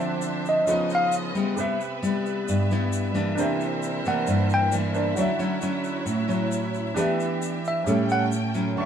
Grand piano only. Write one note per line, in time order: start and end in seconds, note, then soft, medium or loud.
0.00 0.65 D4 medium
0.00 0.67 C5 medium
0.00 0.68 E5 medium
0.66 1.55 C#4 soft
0.66 1.56 F4 soft
0.66 1.56 B4 soft
0.71 1.57 D#5 medium
1.56 3.33 G4 medium
1.56 3.34 B4 medium
1.56 3.35 E5 medium
3.35 4.91 D4 medium
3.35 4.91 A#4 medium
3.35 4.93 C5 medium
3.41 4.94 E5 medium
4.94 5.17 D4 soft
4.94 5.17 A#4 soft
4.94 5.18 C5 soft
4.94 5.18 D5 medium
5.15 6.93 F#4 medium
5.15 6.93 C#5 medium
5.15 6.94 E5 medium
6.94 7.84 D4 medium
6.94 7.85 G4 medium
6.98 7.86 B4 medium
6.98 7.87 E5 medium
7.84 8.74 C#4 medium
7.84 8.75 G4 soft
7.89 8.76 A4 soft
7.89 8.77 E5 medium
8.76 8.86 F#4 soft
8.76 8.86 E5 medium
8.76 8.86 C#6 medium